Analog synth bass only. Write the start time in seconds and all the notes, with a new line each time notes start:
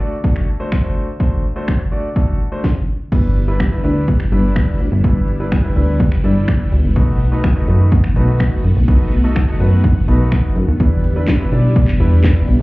3.12 G1
3.84 D2
4.32 G1
4.80 D2
4.92 G1
5.04 G1
5.76 D2
6.24 G1
6.72 D2
6.84 G1
6.96 B1
7.68 F#2
8.16 B1
8.64 F#2
8.76 B1
8.88 B1
9.60 F#2
10.08 B1
10.56 F#2
10.68 D#2
10.80 E2
11.52 B1
12.00 E2
12.48 B1